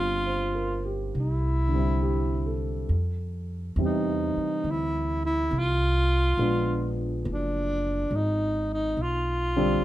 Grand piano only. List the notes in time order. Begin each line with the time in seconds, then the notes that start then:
Already playing: D3 G3 C4 F4
0.27 C5
0.55 A#4
0.85 G4
1.67 D3 G3
1.75 C4 E4
2.02 G4
2.46 A4
3.78 C3 E3 G3 C4
6.38 F3 G#3 B3 D4
9.56 D3 G3 C4 D4